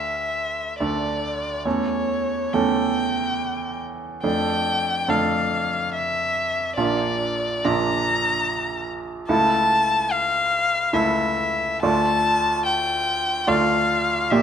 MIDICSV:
0, 0, Header, 1, 3, 480
1, 0, Start_track
1, 0, Key_signature, -1, "minor"
1, 0, Tempo, 847458
1, 935, Time_signature, 3, 2, 24, 8
1, 936, Tempo, 873362
1, 1896, Tempo, 848656
1, 4296, Tempo, 823045
1, 6216, Tempo, 890208
1, 6696, Tempo, 828729
1, 8202, End_track
2, 0, Start_track
2, 0, Title_t, "Violin"
2, 0, Program_c, 0, 40
2, 0, Note_on_c, 0, 76, 50
2, 447, Note_off_c, 0, 76, 0
2, 450, Note_on_c, 0, 74, 49
2, 935, Note_on_c, 0, 73, 52
2, 944, Note_off_c, 0, 74, 0
2, 1418, Note_on_c, 0, 79, 54
2, 1427, Note_off_c, 0, 73, 0
2, 2131, Note_off_c, 0, 79, 0
2, 2370, Note_on_c, 0, 79, 69
2, 2856, Note_on_c, 0, 77, 54
2, 2864, Note_off_c, 0, 79, 0
2, 3330, Note_off_c, 0, 77, 0
2, 3333, Note_on_c, 0, 76, 60
2, 3791, Note_off_c, 0, 76, 0
2, 3799, Note_on_c, 0, 74, 58
2, 4302, Note_on_c, 0, 82, 66
2, 4310, Note_off_c, 0, 74, 0
2, 5021, Note_off_c, 0, 82, 0
2, 5256, Note_on_c, 0, 81, 73
2, 5735, Note_on_c, 0, 77, 74
2, 5744, Note_off_c, 0, 81, 0
2, 6217, Note_on_c, 0, 76, 59
2, 6225, Note_off_c, 0, 77, 0
2, 6690, Note_off_c, 0, 76, 0
2, 6693, Note_on_c, 0, 81, 78
2, 7161, Note_off_c, 0, 81, 0
2, 7177, Note_on_c, 0, 79, 74
2, 7654, Note_on_c, 0, 77, 70
2, 7663, Note_off_c, 0, 79, 0
2, 8132, Note_on_c, 0, 76, 78
2, 8140, Note_off_c, 0, 77, 0
2, 8202, Note_off_c, 0, 76, 0
2, 8202, End_track
3, 0, Start_track
3, 0, Title_t, "Grand piano"
3, 0, Program_c, 1, 0
3, 0, Control_c, 1, 64, 127
3, 0, Note_on_c, 1, 38, 28
3, 0, Note_on_c, 1, 57, 25
3, 0, Note_on_c, 1, 62, 24
3, 0, Note_on_c, 1, 69, 25
3, 434, Note_off_c, 1, 38, 0
3, 435, Note_off_c, 1, 69, 0
3, 436, Note_off_c, 1, 57, 0
3, 436, Note_off_c, 1, 62, 0
3, 454, Note_on_c, 1, 57, 23
3, 456, Note_on_c, 1, 38, 31
3, 457, Note_on_c, 1, 69, 24
3, 458, Note_on_c, 1, 62, 24
3, 919, Note_off_c, 1, 57, 0
3, 920, Note_off_c, 1, 38, 0
3, 920, Note_off_c, 1, 69, 0
3, 921, Note_off_c, 1, 62, 0
3, 937, Note_on_c, 1, 61, 27
3, 938, Note_on_c, 1, 40, 28
3, 938, Note_on_c, 1, 69, 25
3, 939, Note_on_c, 1, 57, 25
3, 944, Control_c, 1, 64, 0
3, 1022, Control_c, 1, 64, 127
3, 1411, Note_off_c, 1, 40, 0
3, 1411, Note_off_c, 1, 61, 0
3, 1412, Note_off_c, 1, 57, 0
3, 1412, Note_off_c, 1, 69, 0
3, 1422, Note_on_c, 1, 57, 29
3, 1423, Note_on_c, 1, 40, 37
3, 1425, Note_on_c, 1, 61, 29
3, 1426, Note_on_c, 1, 69, 29
3, 2348, Note_off_c, 1, 57, 0
3, 2349, Note_off_c, 1, 40, 0
3, 2350, Note_off_c, 1, 61, 0
3, 2350, Note_off_c, 1, 69, 0
3, 2368, Note_on_c, 1, 57, 26
3, 2369, Note_on_c, 1, 62, 27
3, 2370, Note_on_c, 1, 41, 34
3, 2370, Note_on_c, 1, 69, 29
3, 2382, Control_c, 1, 64, 0
3, 2486, Control_c, 1, 64, 127
3, 2835, Note_off_c, 1, 57, 0
3, 2836, Note_off_c, 1, 41, 0
3, 2836, Note_off_c, 1, 62, 0
3, 2836, Note_off_c, 1, 69, 0
3, 2848, Note_on_c, 1, 69, 32
3, 2849, Note_on_c, 1, 41, 37
3, 2849, Note_on_c, 1, 62, 30
3, 2850, Note_on_c, 1, 57, 31
3, 3777, Note_off_c, 1, 69, 0
3, 3778, Note_off_c, 1, 41, 0
3, 3778, Note_off_c, 1, 57, 0
3, 3778, Note_off_c, 1, 62, 0
3, 3804, Note_on_c, 1, 34, 36
3, 3806, Note_on_c, 1, 62, 30
3, 3806, Note_on_c, 1, 65, 31
3, 3807, Note_on_c, 1, 58, 30
3, 3809, Control_c, 1, 64, 0
3, 3890, Control_c, 1, 64, 127
3, 4282, Note_off_c, 1, 34, 0
3, 4284, Note_off_c, 1, 58, 0
3, 4284, Note_off_c, 1, 62, 0
3, 4284, Note_off_c, 1, 65, 0
3, 4297, Note_on_c, 1, 62, 36
3, 4298, Note_on_c, 1, 34, 43
3, 4298, Note_on_c, 1, 58, 34
3, 4299, Note_on_c, 1, 65, 36
3, 5234, Note_off_c, 1, 34, 0
3, 5234, Note_off_c, 1, 62, 0
3, 5235, Note_off_c, 1, 58, 0
3, 5235, Note_off_c, 1, 65, 0
3, 5255, Note_on_c, 1, 37, 42
3, 5259, Note_on_c, 1, 57, 35
3, 5259, Note_on_c, 1, 69, 33
3, 5260, Note_on_c, 1, 64, 33
3, 5266, Control_c, 1, 64, 0
3, 5346, Control_c, 1, 64, 127
3, 6191, Note_off_c, 1, 37, 0
3, 6192, Note_off_c, 1, 57, 0
3, 6192, Note_off_c, 1, 69, 0
3, 6193, Note_off_c, 1, 64, 0
3, 6214, Note_on_c, 1, 64, 34
3, 6216, Note_on_c, 1, 37, 39
3, 6216, Note_on_c, 1, 69, 31
3, 6217, Note_on_c, 1, 57, 34
3, 6680, Note_off_c, 1, 64, 0
3, 6681, Note_off_c, 1, 37, 0
3, 6681, Note_off_c, 1, 69, 0
3, 6682, Note_off_c, 1, 57, 0
3, 6697, Note_on_c, 1, 38, 39
3, 6699, Note_on_c, 1, 65, 35
3, 6700, Note_on_c, 1, 57, 32
3, 6701, Note_on_c, 1, 74, 34
3, 6705, Control_c, 1, 64, 0
3, 6806, Control_c, 1, 64, 127
3, 7627, Note_off_c, 1, 38, 0
3, 7628, Note_off_c, 1, 57, 0
3, 7628, Note_off_c, 1, 65, 0
3, 7629, Note_off_c, 1, 74, 0
3, 7650, Note_on_c, 1, 65, 35
3, 7651, Note_on_c, 1, 38, 38
3, 7653, Note_on_c, 1, 74, 35
3, 7654, Note_on_c, 1, 57, 33
3, 8119, Note_off_c, 1, 38, 0
3, 8119, Note_off_c, 1, 65, 0
3, 8120, Note_off_c, 1, 74, 0
3, 8121, Note_off_c, 1, 57, 0
3, 8138, Note_on_c, 1, 46, 38
3, 8140, Note_on_c, 1, 58, 37
3, 8140, Note_on_c, 1, 67, 38
3, 8140, Note_on_c, 1, 74, 33
3, 8143, Control_c, 1, 64, 0
3, 8202, Note_off_c, 1, 46, 0
3, 8202, Note_off_c, 1, 58, 0
3, 8202, Note_off_c, 1, 67, 0
3, 8202, Note_off_c, 1, 74, 0
3, 8202, End_track
0, 0, End_of_file